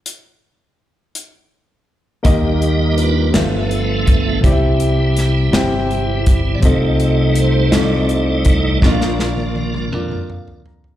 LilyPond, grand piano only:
<<
  \new Staff \with { instrumentName = "Grand piano" } { \time 6/8 \key ees \major \tempo 4. = 55 r2. | <bes ees' g' ees''>4 r8 <b f' a' e''>4 r8 | <c' e' g' d'' e''>4 r8 <c' e' g' g''>4 r8 | <c' f' a' ees''>4 r8 <c' f' a' c'' d''>4 r8 |
<d' f' bes' ees'' f''>4 r8 <d' f' bes' d''>4 r8 | }
  \new Staff \with { instrumentName = "Grand piano" } { \clef bass \time 6/8 \key ees \major r2. | ees4. g,4. | c4. r4. | c4. r4. |
bes,4. r8 f''8 bes''8 | }
>>